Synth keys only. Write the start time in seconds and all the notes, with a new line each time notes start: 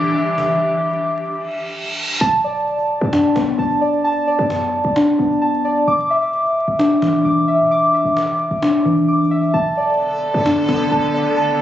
Already playing: E3 D4 E5 D6
0.15 E5
2.21 A5
2.44 D5
3.13 D4
3.36 B3
3.59 A5
3.81 D5
4.04 A5
4.27 D5
4.96 D4
5.19 B3
5.42 A5
5.65 D5
5.88 D6
6.10 E5
6.79 D4
7.02 E3
7.25 D6
7.48 E5
7.71 D6
7.94 E5
8.62 D4
8.85 E3
9.08 D6
9.31 E5
9.54 A5
9.77 D5
10.46 D4
10.69 B3
10.92 A5
11.14 D5
11.37 A5